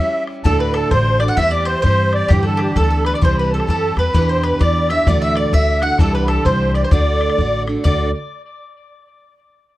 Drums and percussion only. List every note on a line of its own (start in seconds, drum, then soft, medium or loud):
0.27 bodhran medium
0.45 bodhran medium
0.74 bodhran medium
0.91 bodhran medium
1.20 bodhran medium
1.37 bodhran medium
1.66 bodhran medium
1.84 bodhran loud
2.13 bodhran medium
2.30 bodhran medium
2.59 bodhran medium
2.76 bodhran medium
3.05 bodhran medium
3.22 bodhran medium
3.60 bodhran medium
3.68 bodhran medium
3.97 bodhran medium
4.14 bodhran medium
4.44 bodhran medium
4.61 bodhran medium
4.90 bodhran medium
5.07 bodhran medium
5.36 bodhran medium
5.53 bodhran medium
5.82 bodhran medium
5.99 bodhran medium
6.28 bodhran medium
6.46 bodhran medium
6.75 bodhran medium
6.92 bodhran medium
7.21 bodhran medium
7.30 bodhran medium
7.38 bodhran medium
7.68 bodhran medium
7.85 bodhran medium